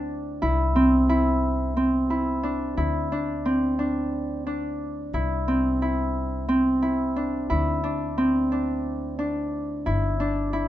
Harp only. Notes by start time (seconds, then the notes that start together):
Already playing: C4 D4 E4
0.42 E4
0.76 C4
1.09 E4
1.77 C4
2.10 E4
2.43 D4
2.77 E4
3.12 D4
3.45 C4
3.79 D4
4.47 D4
5.14 E4
5.48 C4
5.82 E4
6.49 C4
6.82 E4
7.16 D4
7.50 E4
7.84 D4
8.18 C4
8.52 D4
9.19 D4
9.86 E4
10.20 D4
10.53 E4